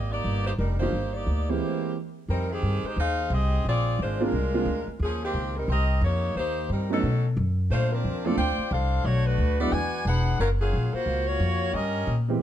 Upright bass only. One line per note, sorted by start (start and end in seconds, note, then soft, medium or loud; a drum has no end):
0.00 0.23 G#1 medium
0.24 0.58 G1 medium
0.58 0.92 F1 medium
0.92 1.26 G1 medium
1.26 1.60 D2 medium
2.28 2.62 F2 medium
2.62 2.82 G2 medium
2.83 muted upright bass stroke soft
2.96 3.29 D#2 medium
3.30 3.63 C2 medium
3.65 3.97 A#1 medium
3.99 4.31 G#1 medium
4.32 4.65 C2 medium
4.65 4.85 D2 medium
4.87 muted upright bass stroke soft
5.00 5.33 D#2 medium
5.34 5.67 C#2 medium
5.68 6.01 C2 medium
6.01 6.34 F2 loud
6.35 6.68 D#2 medium
6.69 7.02 G2 medium
7.03 7.36 B2 medium
7.37 7.69 F#2 medium
7.70 8.03 A#2 medium
8.04 8.37 F2 medium
8.37 8.57 D2 medium
8.58 muted upright bass stroke soft
8.71 9.04 C2 medium
9.04 9.37 B1 medium
9.38 9.71 D2 medium
9.72 10.04 E2 medium
10.05 10.38 E1 medium
10.39 10.72 F#1 medium
10.73 10.92 A#1 medium
10.94 muted upright bass stroke soft
11.06 11.39 C#2 medium
11.40 11.72 F2 medium
11.73 12.06 G2 medium
12.07 12.40 A#2 medium